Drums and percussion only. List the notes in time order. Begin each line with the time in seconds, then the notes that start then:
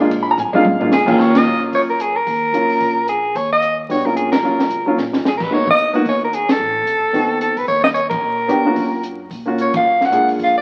0.11 kick, ride
0.38 floor tom, hi-hat pedal
0.54 high tom
0.64 high tom
0.81 floor tom
0.92 snare, hi-hat pedal
1.08 kick, crash
1.19 kick, snare
1.35 snare, ride
1.73 kick, open hi-hat
2.00 closed hi-hat
2.26 kick, open hi-hat
2.54 closed hi-hat
2.70 open hi-hat
2.80 kick, open hi-hat
3.08 closed hi-hat
3.35 kick, open hi-hat
3.62 closed hi-hat
3.90 kick, open hi-hat
4.17 closed hi-hat
4.32 snare, ride
4.59 snare
4.70 closed hi-hat
4.98 snare
5.13 snare
5.25 snare
5.40 kick, crash
5.52 kick
5.67 kick
5.78 closed hi-hat
5.94 open hi-hat
6.05 kick, open hi-hat
6.33 closed hi-hat
6.49 snare, ride
6.87 closed hi-hat
7.14 kick, open hi-hat
7.41 closed hi-hat
7.57 open hi-hat
7.68 kick, open hi-hat
7.84 snare
7.95 closed hi-hat
8.11 kick, ride
8.49 closed hi-hat
8.76 kick, open hi-hat
9.03 closed hi-hat
9.31 kick, open hi-hat
9.58 closed hi-hat
9.74 kick, ride
10.01 snare
10.12 closed hi-hat
10.28 open hi-hat
10.39 kick, open hi-hat